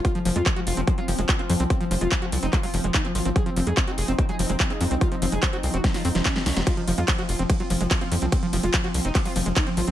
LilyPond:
<<
  \new Staff \with { instrumentName = "Analog synth lead" } { \time 4/4 \key f \phrygian \tempo 4 = 145 f'16 f16 f16 f'16 f16 f16 f'16 f16 f16 f'16 f16 f16 f16 f'16 f16 f16 | c'16 f16 f16 f'16 f16 f16 f16 ees'16 f16 f'16 f16 f16 ees'16 f16 f'16 f16 | aes'16 c'16 c'16 aes'16 c'16 c'16 aes'16 c'16 c'16 aes'16 c'16 c'16 c'16 aes'16 c'16 c'16 | f'16 c'16 c'16 aes'16 c'16 c'16 c'16 ges'16 c'16 f'16 c'16 c'16 des'16 c'16 des'16 c'16 |
f'16 f16 f16 f'16 f16 f16 f'16 f16 f16 f'16 f16 f16 f16 f'16 f16 f16 | c'16 f16 f16 f'16 f16 f16 f16 ees'16 f16 f'16 f16 f16 ees'16 f16 f'16 f16 | }
  \new Staff \with { instrumentName = "Synth texture" } { \time 4/4 \key f \phrygian <f c'>1~ | <f c'>1 | ees'1~ | ees'1 |
<f c'>1~ | <f c'>1 | }
  \new Staff \with { instrumentName = "Acid bass" } { \clef bass \time 4/4 \key f \phrygian f16 f16 f16 aes16 f'16 ges'16 r16 c'16 aes16 ges16 f16 aes16 r16 c'16 f16 c'16 | f16 f16 f16 aes16 f'16 ges'16 r16 c'16 aes16 ges16 f16 aes16 r16 c'16 f16 c'16 | f16 f16 f16 aes16 f'16 ges'16 r16 c'16 aes16 ges16 f16 aes16 r16 c'16 f16 c'16 | f16 f16 f16 aes16 f'16 ges'16 r16 c'16 aes16 ges16 c'16 f16 r16 aes16 f16 ges16 |
f16 f16 f16 aes16 f'16 ges'16 r16 c'16 aes16 ges16 f16 aes16 r16 c'16 f16 c'16 | f16 f16 f16 aes16 f'16 ges'16 r16 c'16 aes16 ges16 f16 aes16 r16 c'16 f16 c'16 | }
  \new Staff \with { instrumentName = "Analog synth bass" } { \clef bass \time 4/4 \key f \phrygian r8 f,,16 f,16 r8 f,,16 f,,16 r8 f,,16 f,,16 r8 f,16 c,16 | r8 f,,16 f,,16 r8 c,16 f,,16 r8 f,,16 f,,16 r8 aes,,16 aes,,16 | r8 f,,16 f,16 r8 f,,16 f,,16 r8 f,,16 f,,16 r8 f,16 c,16 | r8 f,,16 f,,16 r8 c,16 f,,16 r8 f,16 f,,16 r8 c,16 f,,16 |
r8 f,,16 f,16 r8 f,,16 f,,16 r8 f,,16 f,,16 r8 f,16 c,16 | r8 f,,16 f,,16 r8 c,16 f,,16 r8 f,,16 f,,16 r8 aes,,16 aes,,16 | }
  \new DrumStaff \with { instrumentName = "Drums" } \drummode { \time 4/4 <hh bd>16 hh16 hho16 hh16 <hc hh bd>16 hh16 hho16 hh16 <hh bd>16 hh16 hho16 hh16 <hc hh bd>16 hh16 hho16 hh16 | <hh bd>16 hh16 hho16 hh16 <hc hh bd>16 hh16 hho16 hh16 <hc hh bd>16 hho16 hho16 hh16 <hc hh bd>16 hh16 hho16 hh16 | <hh bd>16 hh16 hho16 hh16 <hc hh bd>16 hh16 hho16 hh16 <hh bd>16 hh16 hho16 hh16 <hc hh bd>16 hh16 hho16 hh16 | <hh bd>16 hh16 hho16 hh16 <hc hh bd>16 hh16 hho16 hh16 <hh bd sn>16 <hho sn>16 hho16 <hh sn>16 <hc hh bd sn>16 <hh sn>16 <hho sn>16 <hh sn>16 |
<hh bd cymr>16 hh16 hho16 hh16 <hc hh bd cymr>16 hh16 hho16 hh16 <hh bd cymr>16 hh16 hho16 hh16 <hc hh bd cymr>16 hh16 hho16 hh16 | <hh bd cymr>16 hh16 hho16 hh16 <hc hh bd cymr>16 hh16 hho16 hh16 <hc hh bd cymr>16 hho16 hho16 hh16 <hc hh bd cymr>16 hh16 hho16 hh16 | }
>>